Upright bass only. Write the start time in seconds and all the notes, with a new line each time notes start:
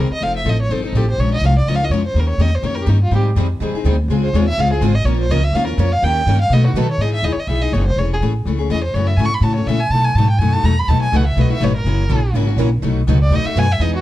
0.10 muted upright bass stroke
0.21 F1
0.45 A1
0.69 G1
0.93 A1
1.18 A#1
1.41 C2
1.66 C#2
1.89 F2
2.14 D#2
2.38 E2
2.63 F2
2.87 G2
3.11 G#2
3.35 F2
3.60 D#2
3.73 muted upright bass stroke
3.84 D2
4.08 C#2
4.33 D#2
4.58 C#2
4.81 G#1
5.04 A#1
5.29 C#2
5.53 D#2
5.77 F2
6.02 D#2
6.26 G2
6.50 B2
6.74 D#3
6.98 G#2
7.22 D#2
7.36 muted upright bass stroke
7.47 B1
7.72 F#1
7.96 E1
8.20 A1
8.45 C#2
8.70 E2
8.94 F#2
9.17 G#2
9.41 A2
9.66 A#2
9.90 B2
10.15 G#2
10.39 F#2
10.63 E2
10.88 D#2
11.01 muted upright bass stroke
11.12 C#2
11.36 B1
11.50 muted upright bass stroke
11.60 G#1
11.84 F#1
12.09 A#1
12.34 G#1
12.56 A#1
12.82 B1
13.07 C#2
13.30 D#2
13.45 muted upright bass stroke
13.56 F#2
13.79 E2